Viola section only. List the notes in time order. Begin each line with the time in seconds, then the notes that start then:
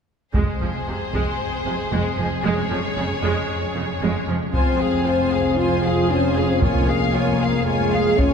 0.34 G#3
0.61 F3
0.87 C3
1.13 G#3
1.65 C3
1.92 G#3
2.18 F3
2.44 G#3
2.70 F3
2.97 C#3
3.23 G#3
3.76 C#3
4.01 G#3
4.28 F3
4.53 F4
4.79 G#4
5.05 F4
5.31 G#4
5.57 F4
5.83 G#4
6.09 F4
6.36 G#4
6.62 F4
6.88 G#4
7.14 F4
7.40 G#4
7.67 F4
7.93 G#4
8.19 F4